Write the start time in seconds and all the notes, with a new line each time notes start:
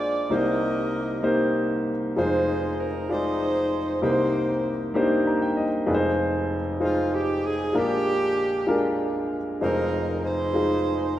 Already playing: A#1 A#2 G#3 D4 F4 G#4 A#4 C5 D5
0.30 C2 C3 A#3 D#4 G4 A#4 C5
0.34 D#5
1.22 A#3 D#4 G4 C5
2.16 F1 F2 G#3 D#4 F4 G#4 C5
2.80 A#4
3.09 G#3 D#4 F4 G#4 C5 D5
4.02 C2 C3 A#3 D#4 G4 C5
4.94 A#3 D4 G4 C5
5.01 D#4
5.27 A#5
5.42 G5
5.57 D#5
5.86 F1 F2 G#3 D#4 F4 B4
5.94 C5
6.80 G#3 D#4 F4 C5
7.14 G4
7.45 G#4
7.73 A#1 A#2 G#3 D4 F4 G4 A#4
8.67 G#3 D4 F4 A#4
9.61 F1 F2 G#3 D#4 F4 A#4 C5
10.24 D#4 G#4 C5
10.53 G#3 D#4 F4 G#4